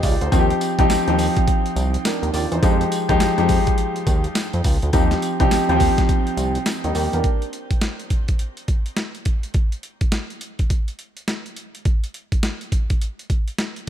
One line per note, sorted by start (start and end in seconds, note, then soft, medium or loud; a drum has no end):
0.00 0.16 C#2 loud
0.00 0.31 F3 medium
0.00 0.34 G#3 medium
0.00 0.22 D#4 medium
0.00 0.34 G4 loud
0.00 0.20 D5 medium
0.00 0.34 D#5 medium
0.00 kick medium
0.00 open hi-hat medium
0.00 tambourine medium
0.04 0.21 F4 medium
0.21 0.29 D2 medium
0.21 0.31 D#4 medium
0.21 0.49 C5 medium
0.21 closed hi-hat medium
0.31 0.53 D#2 loud
0.31 0.75 F3 medium
0.31 0.75 C4 medium
0.31 0.75 D#4 medium
0.31 0.40 F4 medium
0.31 kick loud
0.31 closed hi-hat medium
0.31 tambourine medium
0.39 0.78 G4 loud
0.50 closed hi-hat medium
0.61 closed hi-hat medium
0.61 tambourine medium
0.79 0.87 C2 loud
0.79 1.05 F3 medium
0.79 1.05 C4 medium
0.79 1.06 D#4 medium
0.79 1.06 G4 loud
0.79 kick loud
0.79 closed hi-hat medium
0.90 0.97 D#2 medium
0.90 snare loud
0.90 closed hi-hat medium
0.90 tambourine medium
1.07 1.28 D#2 medium
1.07 2.13 F3 medium
1.07 2.13 C4 medium
1.07 2.05 D#4 medium
1.07 2.06 G4 medium
1.07 closed hi-hat medium
1.18 open hi-hat loud
1.18 tambourine medium
1.36 kick medium
1.36 closed hi-hat medium
1.48 kick medium
1.48 closed hi-hat medium
1.66 closed hi-hat medium
1.76 1.97 C2 medium
1.76 closed hi-hat medium
1.76 tambourine medium
1.94 closed hi-hat medium
2.05 2.33 D4 medium
2.05 2.33 A#4 medium
2.05 snare loud
2.05 closed hi-hat medium
2.05 tambourine loud
2.23 2.31 D#2 medium
2.23 closed hi-hat medium
2.34 2.47 D#2 medium
2.34 2.51 F4 medium
2.34 2.51 D5 medium
2.34 open hi-hat medium
2.34 tambourine medium
2.52 2.60 E2 medium
2.52 2.62 D#4 medium
2.52 2.79 C5 medium
2.52 closed hi-hat medium
2.62 2.83 F2 loud
2.62 3.06 F3 medium
2.62 3.06 G#3 medium
2.62 3.06 D#4 medium
2.62 3.06 G4 medium
2.62 kick loud
2.62 closed hi-hat medium
2.62 tambourine medium
2.81 closed hi-hat medium
2.92 closed hi-hat medium
2.92 tambourine medium
3.09 3.17 D#2 loud
3.09 3.36 F3 medium
3.09 3.36 G#3 medium
3.09 3.36 D#4 medium
3.09 3.36 G4 loud
3.09 kick medium
3.09 closed hi-hat medium
3.20 3.28 F2 medium
3.20 snare loud
3.20 closed hi-hat medium
3.20 tambourine loud
3.38 3.59 F2 medium
3.38 4.44 F3 medium
3.38 4.44 G#3 medium
3.38 4.44 D#4 medium
3.38 4.45 G4 loud
3.38 closed hi-hat medium
3.49 kick loud
3.49 open hi-hat medium
3.49 tambourine medium
3.67 kick medium
3.67 closed hi-hat medium
3.78 closed hi-hat medium
3.96 closed hi-hat medium
4.07 4.27 D#2 loud
4.07 kick loud
4.07 closed hi-hat medium
4.07 tambourine medium
4.24 closed hi-hat medium
4.35 snare loud
4.35 closed hi-hat medium
4.35 tambourine loud
4.53 4.62 F2 medium
4.53 closed hi-hat medium
4.64 4.78 C#2 loud
4.64 kick medium
4.64 open hi-hat medium
4.64 tambourine medium
4.82 4.91 D2 medium
4.82 closed hi-hat medium
4.93 5.14 D#2 loud
4.93 5.36 F3 medium
4.93 5.37 C4 medium
4.93 5.37 D#4 medium
4.93 5.37 G4 medium
4.93 kick loud
4.93 closed hi-hat medium
4.93 tambourine medium
5.11 snare medium
5.11 closed hi-hat medium
5.22 closed hi-hat medium
5.22 tambourine medium
5.40 5.48 C2 loud
5.40 5.67 F3 medium
5.40 5.67 C4 medium
5.40 5.67 D#4 medium
5.40 5.67 G4 loud
5.40 kick loud
5.40 closed hi-hat medium
5.51 5.58 D#2 medium
5.51 snare loud
5.51 closed hi-hat medium
5.51 tambourine medium
5.69 5.90 D#2 loud
5.69 6.75 F3 medium
5.69 6.67 C4 medium
5.69 6.67 D#4 medium
5.69 5.75 F4 medium
5.69 closed hi-hat soft
5.77 6.70 G4 loud
5.77 kick medium
5.77 open hi-hat medium
5.77 tambourine medium
5.98 kick loud
5.98 snare medium
5.98 closed hi-hat medium
6.09 kick loud
6.09 closed hi-hat medium
6.27 closed hi-hat medium
6.37 6.58 C2 medium
6.37 closed hi-hat medium
6.37 tambourine medium
6.55 closed hi-hat medium
6.66 snare loud
6.66 closed hi-hat medium
6.66 tambourine loud
6.84 6.92 D#2 medium
6.84 6.95 G3 medium
6.84 6.95 D#4 medium
6.84 closed hi-hat soft
6.95 7.08 D#2 medium
6.95 7.13 A#3 medium
6.95 7.13 G4 medium
6.95 open hi-hat medium
6.95 tambourine medium
7.13 7.21 E2 medium
7.13 7.41 D4 medium
7.13 7.41 A#4 medium
7.13 closed hi-hat medium
7.24 kick loud
7.24 closed hi-hat medium
7.42 closed hi-hat medium
7.53 closed hi-hat medium
7.71 kick medium
7.71 closed hi-hat medium
7.82 snare loud
7.82 closed hi-hat medium
7.99 closed hi-hat soft
8.10 kick medium
8.10 closed hi-hat medium
8.28 kick medium
8.28 closed hi-hat medium
8.39 closed hi-hat medium
8.57 closed hi-hat soft
8.68 kick medium
8.68 closed hi-hat medium
8.86 closed hi-hat medium
8.97 snare loud
8.97 closed hi-hat medium
9.15 closed hi-hat soft
9.25 kick medium
9.25 closed hi-hat medium
9.43 closed hi-hat medium
9.54 kick loud
9.54 closed hi-hat medium
9.72 closed hi-hat medium
9.83 closed hi-hat medium
10.01 kick medium
10.01 closed hi-hat soft
10.12 snare loud
10.12 closed hi-hat medium
10.30 closed hi-hat soft
10.41 closed hi-hat medium
10.59 kick medium
10.59 closed hi-hat medium
10.70 kick medium
10.70 closed hi-hat medium
10.88 closed hi-hat soft
10.99 closed hi-hat medium
11.17 closed hi-hat medium
11.28 snare loud
11.28 closed hi-hat medium
11.46 closed hi-hat soft
11.56 closed hi-hat medium
11.75 closed hi-hat medium
11.85 kick loud
11.85 closed hi-hat medium
12.04 closed hi-hat medium
12.14 closed hi-hat medium
12.32 kick medium
12.32 closed hi-hat medium
12.43 snare loud
12.43 closed hi-hat medium
12.61 closed hi-hat soft
12.72 kick medium
12.72 closed hi-hat medium
12.90 kick medium
12.90 closed hi-hat medium
13.01 closed hi-hat medium
13.19 closed hi-hat soft
13.30 kick medium
13.30 closed hi-hat medium
13.48 closed hi-hat medium
13.58 snare loud
13.58 closed hi-hat medium
13.76 closed hi-hat soft